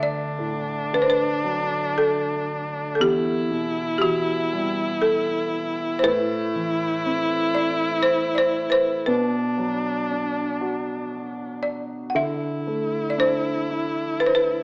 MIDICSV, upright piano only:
0, 0, Header, 1, 2, 480
1, 0, Start_track
1, 0, Tempo, 1047120
1, 1387, Time_signature, 3, 2, 24, 8
1, 1388, Tempo, 1006711
1, 4268, Tempo, 1030928
1, 6188, Tempo, 1005025
1, 6875, End_track
2, 0, Start_track
2, 0, Title_t, "Upright piano"
2, 0, Program_c, 0, 0
2, 0, Note_on_c, 0, 38, 55
2, 42, Control_c, 0, 64, 127
2, 178, Note_on_c, 0, 45, 42
2, 428, Note_on_c, 0, 50, 49
2, 661, Note_on_c, 0, 54, 45
2, 1126, Note_off_c, 0, 45, 0
2, 1361, Note_off_c, 0, 54, 0
2, 1364, Note_off_c, 0, 38, 0
2, 1364, Note_off_c, 0, 50, 0
2, 1376, Note_on_c, 0, 40, 61
2, 1392, Control_c, 0, 64, 0
2, 1471, Control_c, 0, 64, 127
2, 1617, Note_on_c, 0, 47, 52
2, 1865, Note_on_c, 0, 52, 52
2, 2105, Note_on_c, 0, 55, 53
2, 2570, Note_off_c, 0, 47, 0
2, 2811, Note_off_c, 0, 40, 0
2, 2814, Note_off_c, 0, 52, 0
2, 2814, Note_off_c, 0, 55, 0
2, 2821, Note_on_c, 0, 45, 75
2, 2842, Control_c, 0, 64, 0
2, 2923, Control_c, 0, 64, 127
2, 3069, Note_on_c, 0, 52, 50
2, 3310, Note_on_c, 0, 60, 52
2, 3550, Note_on_c, 0, 64, 55
2, 4005, Note_off_c, 0, 52, 0
2, 4242, Note_off_c, 0, 45, 0
2, 4248, Note_off_c, 0, 60, 0
2, 4249, Note_off_c, 0, 64, 0
2, 4271, Note_on_c, 0, 47, 62
2, 4274, Control_c, 0, 64, 0
2, 4348, Control_c, 0, 64, 127
2, 4504, Note_on_c, 0, 54, 50
2, 4753, Note_on_c, 0, 62, 50
2, 4986, Note_on_c, 0, 66, 46
2, 5448, Note_off_c, 0, 54, 0
2, 5691, Note_off_c, 0, 47, 0
2, 5691, Note_off_c, 0, 66, 0
2, 5695, Note_off_c, 0, 62, 0
2, 5703, Note_on_c, 0, 50, 60
2, 5715, Control_c, 0, 64, 0
2, 5805, Control_c, 0, 64, 127
2, 5947, Note_on_c, 0, 57, 49
2, 6182, Note_on_c, 0, 62, 51
2, 6430, Note_on_c, 0, 64, 52
2, 6875, Note_off_c, 0, 50, 0
2, 6875, Note_off_c, 0, 57, 0
2, 6875, Note_off_c, 0, 62, 0
2, 6875, Note_off_c, 0, 64, 0
2, 6875, End_track
0, 0, End_of_file